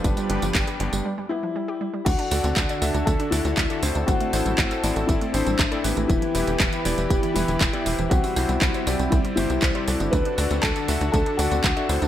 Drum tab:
CC |----------------|x---------------|----------------|----------------|
HH |xxxxxxxx--------|xxoxxxoxxxoxxxox|xxoxxxoxxxoxxxox|xxoxxxoxxxoxxxox|
TB |xx-xxx-x--------|x-xxxxxxx-xxx-xx|x-xxxxxxx-xxx-xx|x-xxxxxxx-xxx-xx|
CP |----x-----------|----x-------x---|----x-------x---|----x-------x---|
BD |o---o-----------|o---o---o---o---|o---o---o---o---|o---o---o---o---|

CC |----------------|----------------|
HH |xooxxxoxxxoxxxox|xxoxxxoxxxoxxxox|
TB |xxxxxxxxx-xxx-xx|x-xxxxxxx-xxx-xx|
CP |----x-------x---|----x-------x---|
BD |o---o---o---o---|o---o---o---o---|